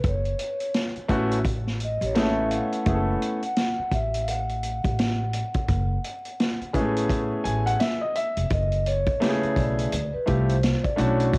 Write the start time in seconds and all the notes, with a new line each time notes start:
0.04 F#1 C#5, kick, closed hi-hat
0.25 closed hi-hat
0.39 closed hi-hat
0.60 closed hi-hat
0.74 snare, closed hi-hat
0.96 muted upright bass stroke, closed hi-hat
1.08 A1 A3 B3 C#4 E4 F#4, kick, closed hi-hat
1.31 closed hi-hat
1.45 kick, closed hi-hat
1.67 snare
1.80 closed hi-hat
1.84 D#5
2.01 A1 C#5, closed hi-hat
2.15 A3 B3 C#4 E4 G#4, snare, closed hi-hat
2.19 A4 E5
2.47 F5, closed hi-hat
2.55 F#5
2.72 closed hi-hat
2.86 F#1 A3 B3 C#4 E4 G#4, kick, closed hi-hat
2.95 A4
3.22 closed hi-hat
3.42 F#5, closed hi-hat
3.56 snare, closed hi-hat
3.78 muted upright bass stroke
3.91 A1 E5, kick, closed hi-hat
4.14 closed hi-hat
4.23 F5
4.28 F#5, closed hi-hat
4.49 closed hi-hat
4.63 closed hi-hat
4.84 A1, kick, closed hi-hat
4.99 snare, closed hi-hat
5.33 closed hi-hat
5.54 kick, closed hi-hat
5.68 F#1, kick, closed hi-hat
6.04 closed hi-hat
6.25 closed hi-hat
6.40 snare, closed hi-hat
6.60 muted upright bass stroke, closed hi-hat
6.73 A1 G#3 B3 C#4 E4 G#4, kick, closed hi-hat
6.79 A3
6.96 closed hi-hat
7.09 kick, closed hi-hat
7.44 A1 G#5, closed hi-hat
7.66 F#5, closed hi-hat
7.80 E5, snare, closed hi-hat
8.01 D#5
8.15 E5, closed hi-hat
8.37 F1, closed hi-hat
8.50 F#1 D#5, kick, closed hi-hat
8.72 closed hi-hat
8.86 C#5, closed hi-hat
9.07 kick, closed hi-hat
9.20 C#3 A3 B3 E4 G4, snare, closed hi-hat
9.29 G#4
9.43 muted upright bass stroke, closed hi-hat
9.56 B1 D5, kick, closed hi-hat
9.79 closed hi-hat
9.92 D2, closed hi-hat
10.14 B4, muted upright bass stroke
10.26 C2 A3 C4 E4 F4 G4 C5, kick, closed hi-hat
10.49 closed hi-hat
10.63 snare, closed hi-hat
10.83 D5, kick, closed hi-hat
10.96 B1 A3 C#4 D4 E4 F#4 C#5, closed hi-hat
11.20 closed hi-hat
11.32 D5, kick, closed hi-hat